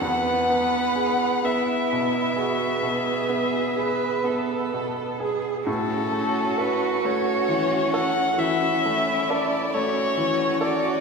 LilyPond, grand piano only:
\new Staff \with { instrumentName = "Grand piano" } { \time 12/8 \key a \major \tempo 4. = 43 e,8 b8 gis'8 b8 b,8 gis'8 b,8 b8 gis'8 b8 b,8 gis'8 | a,8 a8 a'8 a8 e8 a'8 e8 a8 a'8 a8 e8 a'8 | }